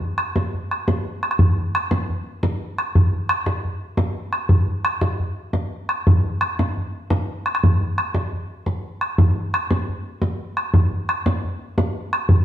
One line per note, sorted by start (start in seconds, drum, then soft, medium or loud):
0.01 bodhran soft
0.18 bodhran medium
0.36 bodhran medium
0.54 bodhran soft
0.71 bodhran soft
0.88 bodhran medium
1.23 bodhran soft
1.31 bodhran soft
1.39 bodhran medium
1.58 bodhran soft
1.75 bodhran medium
1.91 bodhran medium
2.10 bodhran soft
2.43 bodhran medium
2.78 bodhran soft
2.95 bodhran medium
3.13 bodhran soft
3.29 bodhran medium
3.46 bodhran medium
3.65 bodhran soft
3.97 bodhran medium
4.33 bodhran medium
4.49 bodhran medium
4.68 bodhran soft
4.85 bodhran medium
5.01 bodhran medium
5.20 bodhran soft
5.53 bodhran medium
5.89 bodhran soft
6.07 bodhran medium
6.25 bodhran soft
6.41 bodhran medium
6.59 bodhran medium
6.77 bodhran soft
7.10 bodhran medium
7.46 bodhran soft
7.55 bodhran medium
7.64 bodhran medium
7.82 bodhran soft
7.98 bodhran medium
8.14 bodhran medium
8.33 bodhran soft
8.66 bodhran medium
9.01 bodhran soft
9.18 bodhran medium
9.38 bodhran soft
9.54 bodhran medium
9.71 bodhran medium
9.89 bodhran soft
10.22 bodhran medium
10.57 bodhran soft
10.74 bodhran medium
10.93 bodhran soft
11.09 bodhran medium
11.26 bodhran medium
11.45 bodhran soft
11.78 bodhran medium
12.13 bodhran medium
12.29 bodhran medium